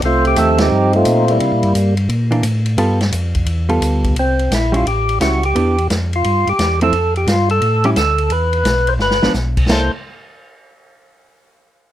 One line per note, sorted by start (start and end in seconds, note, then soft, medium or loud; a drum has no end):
0.02 0.36 C2 medium
0.02 0.69 A3 medium
0.02 0.60 C4 medium
0.02 0.25 F4 loud
0.02 ride medium
0.25 0.39 G4 loud
0.25 ride soft
0.36 0.70 D#2 medium
0.36 0.89 F3 medium
0.36 0.89 A3 medium
0.36 0.90 D#4 medium
0.36 0.90 G4 medium
0.36 0.59 A4 loud
0.36 hi-hat pedal medium
0.36 ride medium
0.58 0.95 C4 medium
0.58 1.25 D#4 medium
0.58 0.93 G4 medium
0.58 snare medium
0.58 ride medium
0.72 1.05 G2 medium
0.93 1.38 A3 medium
0.93 1.38 C4 medium
0.93 1.31 F4 loud
0.93 ride soft
1.05 1.40 A#2 medium
1.05 hi-hat pedal medium
1.05 ride medium
1.28 1.95 G3 medium
1.28 1.94 A#3 medium
1.28 1.73 E4 medium
1.28 ride soft
1.40 1.52 C3 medium
1.40 ride medium
1.52 1.63 A#2 medium
1.63 1.74 G2 medium
1.63 ride soft
1.75 2.08 G2 loud
1.75 hi-hat pedal medium
1.75 ride medium
1.97 ride medium
2.09 2.43 A#2 medium
2.09 ride medium
2.31 2.42 E3 medium
2.31 2.43 A#3 medium
2.31 2.43 D4 medium
2.31 ride soft
2.43 2.77 A2 medium
2.43 hi-hat pedal medium
2.43 ride medium
2.66 ride soft
2.77 3.11 G2 medium
2.77 2.98 G3 medium
2.77 2.99 B3 medium
2.77 2.98 F4 medium
2.77 2.99 A4 medium
2.77 ride medium
3.01 snare medium
3.01 ride soft
3.12 3.46 F2 medium
3.12 hi-hat pedal medium
3.12 ride medium
3.35 kick soft
3.35 ride soft
3.46 3.80 E2 medium
3.46 ride medium
3.69 4.14 G3 medium
3.69 4.14 B3 medium
3.69 4.14 F4 medium
3.69 4.14 A4 medium
3.69 ride soft
3.81 4.15 D2 medium
3.81 hi-hat pedal medium
3.81 ride medium
4.04 kick medium
4.04 ride medium
4.15 4.49 C2 medium
4.15 ride medium
4.19 4.53 C4 medium
4.39 ride soft
4.51 4.84 A#1 medium
4.51 4.74 E4 medium
4.51 snare medium
4.51 hi-hat pedal medium
4.51 ride medium
4.72 4.84 G3 medium
4.72 4.84 C#4 medium
4.72 4.85 E4 medium
4.72 ride soft
4.76 4.86 F4 medium
4.86 5.19 A1 medium
4.86 5.19 G4 medium
4.86 ride medium
5.09 ride soft
5.20 5.54 C#2 medium
5.20 5.41 G3 soft
5.20 5.41 C#4 soft
5.20 5.41 E4 medium
5.20 5.44 F#4 medium
5.20 snare medium
5.20 hi-hat pedal medium
5.20 ride medium
5.43 5.88 G4 medium
5.43 ride soft
5.55 5.89 E2 medium
5.55 5.75 E3 soft
5.55 5.75 B3 medium
5.55 5.76 D4 soft
5.55 5.76 G4 medium
5.55 ride medium
5.78 ride soft
5.90 6.23 F2 medium
5.90 snare medium
5.90 hi-hat pedal medium
5.90 ride medium
6.13 6.49 F4 loud
6.13 ride soft
6.24 6.45 G2 medium
6.24 ride medium
6.47 6.53 G2 soft
6.47 6.80 G4 loud
6.47 ride soft
6.59 6.92 E2 medium
6.59 snare medium
6.59 hi-hat pedal soft
6.59 ride medium
6.81 6.92 F3 medium
6.81 6.92 A3 medium
6.81 6.92 C4 medium
6.81 6.93 E4 medium
6.81 7.14 A4 loud
6.81 ride soft
6.92 7.26 F2 medium
6.92 ride medium
7.16 7.28 G4 medium
7.16 ride soft
7.27 7.61 G2 medium
7.27 7.49 F4 medium
7.27 snare medium
7.27 hi-hat pedal medium
7.27 ride medium
7.49 7.86 A4 medium
7.49 ride soft
7.62 7.95 A2 medium
7.62 ride medium
7.84 7.95 G3 medium
7.84 7.96 C#4 medium
7.84 7.96 E4 medium
7.84 7.91 G4 medium
7.84 ride soft
7.96 8.30 D2 medium
7.96 8.32 A4 medium
7.96 snare medium
7.96 hi-hat pedal medium
7.96 ride medium
8.18 ride soft
8.30 8.64 E2 medium
8.30 8.90 B4 loud
8.30 ride medium
8.53 ride soft
8.64 8.98 B1 medium
8.64 snare medium
8.64 hi-hat pedal medium
8.64 ride medium
8.87 8.94 C5 medium
8.87 ride soft
8.99 9.20 G1 medium
8.99 9.33 B4 medium
8.99 snare soft
9.11 snare medium
9.22 9.28 G1 soft
9.22 9.33 F3 medium
9.22 9.34 B3 medium
9.22 9.34 D4 medium
9.22 snare medium
9.34 9.68 B1 medium
9.34 snare soft
9.34 hi-hat pedal medium
9.57 kick medium
9.57 crash medium
9.68 9.90 C2 medium
9.68 9.90 A#3 medium
9.68 9.90 E4 medium
9.68 9.90 A4 medium
9.68 9.92 C5 medium
9.68 snare medium
9.68 crash medium